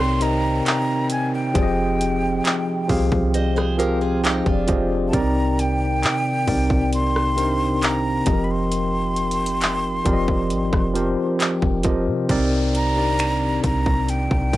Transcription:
Already playing: 808-style bass C2, tine electric piano C3 C4 D#4 A#4 C#5 D5, brass ensemble C3 D#3 A#3 C4 G5, flute C6, downlifter
0.00 cross-stick
0.20 tine electric piano C3 C4 D#4 A#4 D#5, flute A#5, closed hi-hat
0.66 flute A#5, clap, closed hi-hat
1.10 flute G#5, closed hi-hat
1.34 flute G5
1.54 808-style bass F1, tine electric piano F3 C4 G4 G#4 D5, brass ensemble F3 G#3 D#4, kick, closed hi-hat
1.63 tine electric piano D#5
2.01 closed hi-hat
2.45 clap, closed hi-hat
2.88 808-style bass C2, tine electric piano F3 C4 G4 G#4 F5, kick, open hi-hat
3.12 808-style bass C2, kick
3.34 brass ensemble F4, steel-string acoustic guitar C5 D#5, closed hi-hat
3.56 steel-string acoustic guitar G#4 C5, cross-stick
3.78 tine electric piano F3 C4 G4 G#4 F5, steel-string acoustic guitar G4 A#4, closed hi-hat
4.01 steel-string acoustic guitar F4 G#4
4.23 steel-string acoustic guitar D#4 G4, tine electric piano G5, clap, closed hi-hat
4.46 808-style bass F1, steel-string acoustic guitar D4 F4, kick
4.67 808-style bass F1, tine electric piano F3 C4 G4 G#4 C5 D#5, kick, closed hi-hat
5.08 tine electric piano C3, flute A5
5.13 808-style bass C2, brass ensemble D#3 A#3 D5, tine electric piano C4 D4 A#4 D5, flute A#5, kick, closed hi-hat
5.20 tine electric piano D#4
5.59 flute G5, closed hi-hat
6.03 808-style bass C3, clap, closed hi-hat
6.47 808-style bass C2, tine electric piano C3 C4 D#4 A#4 D5, kick, open hi-hat
6.70 kick
6.93 flute C6, closed hi-hat
7.16 cross-stick
7.36 tine electric piano C3 C4 D4 A#4 C5, closed hi-hat
7.44 tine electric piano D#4
7.82 flute A#5, clap, closed hi-hat
8.25 808-style bass F1, tine electric piano F3 C4 G4 A4 D#5, brass ensemble F3 D#4, kick, closed hi-hat
8.33 tine electric piano A#4
8.44 flute B5
8.51 flute C6
8.72 closed hi-hat
9.16 closed hi-hat
9.31 closed hi-hat
9.46 closed hi-hat
9.61 clap, closed hi-hat
10.05 808-style bass F1, tine electric piano F3 C4 G4 A#4 D5, kick, closed hi-hat
10.13 tine electric piano D#5
10.28 kick
10.50 808-style bass G#1, closed hi-hat
10.73 808-style bass F1, kick, cross-stick
10.94 tine electric piano F3 C4 G4 A#4 C5, closed hi-hat
11.40 tine electric piano G5, clap, closed hi-hat
11.62 808-style bass F1, kick
11.83 tine electric piano F3 C4 G4 A#4 D#5, kick, closed hi-hat
12.07 808-style bass C3
12.29 808-style bass C2, tine electric piano C3 C4 D#4 A#4 D5, brass ensemble C3 D#3 A#3 G4 D5, kick, closed hi-hat, downlifter
12.75 flute A#5, closed hi-hat
12.96 tine electric piano C3 C4 D4 A#4 D5
13.04 tine electric piano D#4
13.19 finger snap, closed hi-hat
13.64 808-style bass C2, flute A#5, kick, closed hi-hat
13.86 kick
14.08 brass ensemble F4, flute G5, closed hi-hat
14.31 808-style bass C2, kick
14.53 kick, closed hi-hat

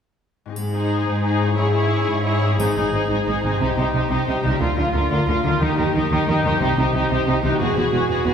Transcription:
0.46 harp G#2 C4 D#4
0.52 cello section G#2, harp G#4
0.56 triangle
0.73 viola section D#4, violin section G#4 C5
1.07 cello section G#2
1.23 viola section D#4, violin section G#4 C5
1.39 harp G#2
1.43 harp C#4
1.48 harp E4
1.52 harp G#4, violin section C#5
1.57 cello section G#2, viola section E4, violin section G#4
1.73 viola section E4, violin section G#4 C#5
2.07 cello section G#2
2.24 viola section E4, violin section G#4 C#5
2.42 harp G#2
2.46 harp C4
2.51 harp D#4
2.55 harp G#4
2.59 double bass section G#1, cello section G#2, viola section D#4, violin section G#4 C5, triangle
2.76 double bass section G#1, cello section G#2, viola section D#4, violin section G#4 C5
2.93 double bass section G#1, cello section G#2, viola section D#4, violin section G#4 C5
3.10 double bass section G#1, cello section G#2, viola section D#4, violin section G#4 C5
3.27 double bass section G#1, cello section G#2, viola section D#4, violin section G#4 C5
3.43 double bass section G#1, cello section G#2, harp C3, viola section D#4, violin section G#4 C5
3.48 harp C4
3.52 harp D#4
3.57 double bass section C2, cello section C3, harp G4
3.61 viola section D#4, violin section G4 C5
3.76 double bass section C2, cello section C3, viola section D#4, violin section G4 C5
3.94 double bass section C2, cello section C3, viola section D#4, violin section G4 C5
4.10 double bass section C2, cello section C3, viola section D#4, violin section G4 C5
4.27 double bass section C2, cello section C3, viola section D#4, violin section G4 C5
4.43 double bass section C2, cello section C3, harp D3, viola section D#4, violin section G4 C5
4.48 harp A#3
4.52 harp F4
4.57 double bass section D2, harp A#4
4.61 cello section D3, viola section F4, violin section F4 A#4
4.77 double bass section D2, cello section D3, viola section F4, violin section F4 A#4
4.94 double bass section D2, cello section D3, viola section F4, violin section F4 A#4
5.11 double bass section D2, cello section D3, viola section F4, violin section F4 A#4
5.28 double bass section D2, cello section D3, violin section F4 A#4, viola section F4
5.44 double bass section D2, cello section D3, harp D#3, viola section F4, violin section F4 A#4
5.48 harp A#3
5.53 harp D#4
5.57 cello section D#3, harp G4
5.61 double bass section D#2, timpani D#3, viola section D#4, violin section G4 A#4
5.78 double bass section D#2, cello section D#3, viola section D#4, violin section G4 A#4
5.95 double bass section D#2, cello section D#3, viola section D#4, violin section G4 A#4
6.11 double bass section D#2, cello section D#3, viola section D#4, violin section G4 A#4
6.28 double bass section D#2, cello section D#3, viola section D#4, violin section G4 A#4
6.43 double bass section D#2, harp C3, cello section D#3, viola section D#4, violin section G4 A#4
6.47 harp C4
6.51 harp D#4
6.56 harp G4
6.61 double bass section C2, cello section C3, viola section D#4, violin section G4 C5
6.77 double bass section C2, cello section C3, viola section D#4, violin section G4 C5
6.93 double bass section C2, cello section C3, viola section D#4, violin section G4 C5
7.10 double bass section C2, cello section C3, viola section D#4, violin section G4 C5
7.27 double bass section C2, cello section C3, viola section D#4, violin section G4 C5
7.43 double bass section C2, cello section C3, harp E3, viola section D#4, violin section G4 C5
7.47 harp B3
7.52 harp F#4
7.56 double bass section E1, cello section E2, harp G#4, violin section B4
7.60 viola section F#4, violin section G#4
7.76 double bass section E1, cello section E2, viola section F#4, violin section G#4 B4
7.92 double bass section E1, cello section E2, viola section F#4, violin section G#4 B4
8.09 double bass section E1, cello section E2, viola section F#4, violin section G#4 B4
8.25 double bass section E1, cello section E2, viola section F#4, violin section G#4 B4

